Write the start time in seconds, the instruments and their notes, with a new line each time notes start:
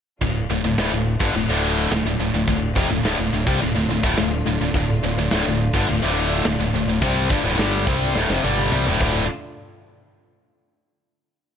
0.21 fingered electric bass D1, distorted electric guitar D2 A2, string section D3 A3 D4 F4, kick, china
0.50 fingered electric bass D1, distorted electric guitar D2 A2
0.63 fingered electric bass D1, distorted electric guitar D2 A2
0.78 fingered electric bass D1, distorted electric guitar D2 A2, snare, china
0.92 fingered electric bass D1, distorted electric guitar D2 A2
1.20 fingered electric bass G1, distorted electric guitar G2 D3, kick
1.35 fingered electric bass D1, distorted electric guitar D2 A2, china
1.49 fingered electric bass D1, distorted electric guitar D2 A2 D3
1.91 fingered electric bass D1, distorted electric guitar D2 A2, snare, china
2.05 fingered electric bass D1, distorted electric guitar D2 A2
2.19 fingered electric bass D1, distorted electric guitar D2 A2
2.34 fingered electric bass D1, distorted electric guitar D2 A2
2.47 fingered electric bass D1, distorted electric guitar D2 A2, kick, china
2.76 fingered electric bass F1, distorted electric guitar F2 C3, kick
2.90 fingered electric bass D1, distorted electric guitar D2 A2
3.04 fingered electric bass D1, distorted electric guitar D2 A2, snare, china
3.19 fingered electric bass D1, distorted electric guitar D2 A2
3.33 fingered electric bass D1, distorted electric guitar D2 A2
3.47 fingered electric bass C2, distorted electric guitar C3 G3, kick
3.61 fingered electric bass D1, distorted electric guitar D2 A2, china
3.75 fingered electric bass D1, distorted electric guitar D2 A2
3.89 fingered electric bass D1, distorted electric guitar D2 A2
4.03 fingered electric bass D1, distorted electric guitar D2 A2, kick
4.17 fingered electric bass D1, distorted electric guitar D2 A2, snare, china
4.46 fingered electric bass D1, distorted electric guitar D2 A2
4.60 fingered electric bass D1, distorted electric guitar D2 A2
4.74 fingered electric bass D1, distorted electric guitar D2 A2, kick, china
5.03 fingered electric bass D1, distorted electric guitar D2 A2
5.18 fingered electric bass D1, distorted electric guitar D2 A2
5.31 fingered electric bass D1, distorted electric guitar D2 A2, snare, china
5.46 fingered electric bass D1, distorted electric guitar D2 A2
5.74 fingered electric bass G1, distorted electric guitar G2 D3, kick
5.88 fingered electric bass D1, distorted electric guitar D2 A2, china
6.02 fingered electric bass D1, distorted electric guitar D2 A2 D3
6.45 fingered electric bass D1, distorted electric guitar D2 A2, snare, china
6.60 fingered electric bass D1, distorted electric guitar D2 A2
6.74 fingered electric bass D1, distorted electric guitar D2 A2
6.87 fingered electric bass D1, distorted electric guitar D2 A2
7.01 fingered electric bass C2, distorted electric guitar C3 G3 C4, kick, china
7.30 fingered electric bass G1, distorted electric guitar G2 D3, kick
7.44 fingered electric bass D1, distorted electric guitar D2 A2
7.58 fingered electric bass G1, distorted electric guitar G2 D3 G3, snare, china
7.86 fingered electric bass C2, distorted electric guitar C3 G3 C4, kick
8.15 fingered electric bass D1, distorted electric guitar D2 A2, snare
8.29 fingered electric bass F1, distorted electric guitar F2 C3, snare
8.43 fingered electric bass G1, distorted electric guitar G2 D3 G3, high tom
8.58 high tom
8.72 fingered electric bass C2, distorted electric guitar C3 G3, mid tom
8.87 fingered electric bass D1, distorted electric guitar D2 A2, mid tom
9.00 fingered electric bass D1, distorted electric guitar D2 A2 D3, string section D3 A3 D4 F4, kick, crash